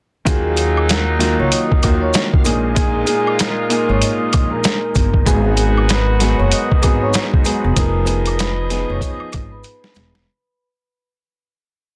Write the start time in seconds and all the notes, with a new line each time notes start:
0.25 D#2 A#2 D#3 F#3 A#3 D#4 F4 F#4 G#4 F5 G#5, kick, closed hi-hat, maracas
0.57 closed hi-hat, maracas
0.77 high woodblock
0.89 A#4 A#5, snare, closed hi-hat, maracas
1.19 D#3 A#3 F4 F#4, snare, closed hi-hat, maracas
1.39 C#2 C#5 C#6
1.51 D#5 D#6, closed hi-hat, maracas
1.72 kick
1.83 D#2 D#3 A#3 F4 F#4, kick, closed hi-hat, high woodblock, maracas
2.02 C#5 C#6
2.14 snare, closed hi-hat, maracas
2.33 kick
2.44 A#1 A#2 G#3 A#3 D#4 F4 G#4, closed hi-hat, maracas
2.75 A#2 A#3 D#4 G#4 G#5, kick, closed hi-hat, maracas
3.05 A#2 A#3 D#4 G#4, closed hi-hat, maracas
3.27 high woodblock
3.39 A#4 A#5, snare, closed hi-hat, maracas
3.69 A#2 A#3 D#4 G#4, closed hi-hat, maracas
3.89 G#1 C#5 C#6
4.02 D#5 D#6, closed hi-hat, maracas
4.33 A#1, kick, closed hi-hat, high woodblock, maracas
4.50 A#4 A#5
4.64 snare, closed hi-hat, maracas
4.95 G1, kick, closed hi-hat, maracas
5.14 kick
5.25 G#1 G#2 D#3 F#3 B3 F#4 G#4 G#5, kick, closed hi-hat, maracas
5.57 closed hi-hat, maracas
5.77 high woodblock
5.89 B4 B5, snare, closed hi-hat, maracas
6.19 G#2 F#3 B3 G#4, snare, closed hi-hat, maracas
6.37 F#1 C#5 C#6
6.52 D#5 D#6, closed hi-hat, maracas
6.71 kick
6.82 G#1 G#2 F#3 B3 G#4, kick, closed hi-hat, high woodblock, maracas
7.02 C#5 C#6
7.13 snare, closed hi-hat, maracas
7.33 kick
7.44 G#2 F#3 B3 G#4, closed hi-hat, maracas
7.64 E1
7.75 F1 F3 B3 D#4 G#4 A#4 D#5 A#5, kick, closed hi-hat, maracas
8.05 F3 B3 D#4 G#4, closed hi-hat, maracas
8.26 closed hi-hat, high woodblock
8.39 B4 B5, snare, closed hi-hat, maracas
8.69 F3 B3 D#4 G#4, snare, closed hi-hat, maracas
8.89 F1 C#5 C#6
9.01 D#5 D#6, kick, closed hi-hat, maracas
9.20 high woodblock
9.32 G#1, kick, closed hi-hat, high woodblock, maracas
9.51 B4 B5
9.63 closed hi-hat, maracas
9.84 snare
9.95 E1, snare, closed hi-hat, maracas
10.15 snare